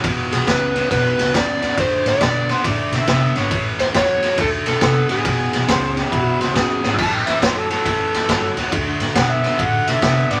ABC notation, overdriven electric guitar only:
X:1
M:4/4
L:1/8
Q:"Swing" 1/4=138
K:A
V:1 name="Overdriven electric guitar" clef=bass
[E,,B,,]2 [E,,C,] [E,,C,] [E,,B,,]2 [E,,C,] [E,,C,] | [D,A,]2 [D,B,] [D,B,] [D,A,]2 [D,B,] [D,B,] | [A,,E,]2 [A,,F,] [A,,F,] [D,A,]2 [D,B,] [D,B,] | [E,,B,,]2 [E,,C,] [E,,C,] [E,,B,,]2 [E,,C,] [E,,C,] |
[A,,E,]2 [A,,F,] [A,,F,] [A,,E,]2 [A,,F,] [A,,F,] | [D,A,]2 [D,B,] [D,B,] [D,A,]2 [D,B,] [D,B,] |]